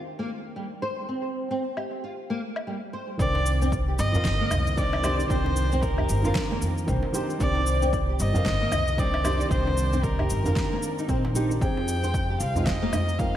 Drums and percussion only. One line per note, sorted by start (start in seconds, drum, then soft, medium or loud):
1.77 low woodblock medium
2.56 low woodblock medium
3.19 kick loud
3.19 shaker soft
3.35 djembe slap medium
3.35 djembe tone medium
3.46 shaker medium
3.62 djembe tone medium
3.62 shaker soft
3.72 kick medium
3.72 shaker soft
3.99 djembe slap soft
3.99 shaker medium
4.14 djembe tone medium
4.14 djembe bass medium
4.14 shaker soft
4.25 kick loud
4.25 snare medium
4.25 shaker soft
4.51 djembe slap medium
4.51 djembe tone medium
4.51 djembe bass loud
4.51 low woodblock medium
4.51 shaker medium
4.67 shaker soft
4.78 kick loud
4.78 shaker soft
4.93 djembe slap medium
4.93 low woodblock medium
5.04 djembe tone medium
5.04 low woodblock medium
5.04 shaker medium
5.20 shaker soft
5.30 kick loud
5.30 shaker soft
5.46 djembe slap medium
5.46 djembe tone medium
5.56 shaker medium
5.72 djembe tone medium
5.72 shaker soft
5.83 kick loud
5.83 shaker soft
5.98 djembe bass medium
5.98 low woodblock medium
6.09 shaker medium
6.24 djembe tone medium
6.24 djembe bass medium
6.24 shaker soft
6.35 kick loud
6.35 snare medium
6.35 shaker soft
6.51 djembe tone medium
6.62 shaker medium
6.78 shaker soft
6.88 kick loud
6.88 shaker soft
7.03 djembe slap medium
7.14 shaker medium
7.30 shaker soft
7.40 kick loud
7.40 shaker soft
7.55 djembe slap medium
7.55 djembe tone medium
7.67 shaker medium
7.82 djembe tone medium
7.82 shaker soft
7.93 kick loud
7.93 shaker soft
8.19 djembe slap soft
8.19 shaker medium
8.35 djembe tone medium
8.35 djembe bass loud
8.35 shaker soft
8.46 kick loud
8.46 snare medium
8.46 shaker soft
8.71 djembe slap medium
8.71 djembe tone medium
8.71 djembe bass loud
8.71 low woodblock medium
8.71 shaker medium
8.88 shaker soft
8.98 kick loud
8.98 shaker soft
9.14 djembe slap medium
9.14 low woodblock medium
9.25 djembe tone medium
9.25 low woodblock medium
9.25 shaker medium
9.41 shaker soft
9.51 kick loud
9.51 shaker soft
9.67 djembe slap medium
9.67 djembe tone medium
9.78 shaker medium
9.93 djembe tone medium
9.93 shaker soft
10.04 kick loud
10.04 shaker soft
10.19 djembe bass medium
10.19 low woodblock medium
10.30 shaker medium
10.46 djembe tone medium
10.46 djembe bass loud
10.46 shaker soft
10.56 kick loud
10.56 snare medium
10.56 shaker soft
10.72 djembe tone medium
10.83 shaker medium
10.99 shaker soft
11.09 kick loud
11.09 shaker soft
11.25 djembe slap medium
11.35 shaker medium
11.51 shaker soft
11.62 kick loud
11.62 shaker soft
11.77 djembe slap soft
11.77 djembe tone medium
11.88 shaker medium
12.03 djembe tone medium
12.03 shaker soft
12.14 kick loud
12.14 shaker soft
12.40 djembe slap soft
12.40 shaker medium
12.56 djembe tone medium
12.56 djembe bass medium
12.56 shaker soft
12.67 kick loud
12.67 snare medium
12.67 shaker soft
12.93 djembe slap medium
12.93 djembe tone medium
12.93 djembe bass medium
12.93 low woodblock medium
12.93 shaker medium
13.09 shaker soft
13.19 kick loud
13.19 shaker soft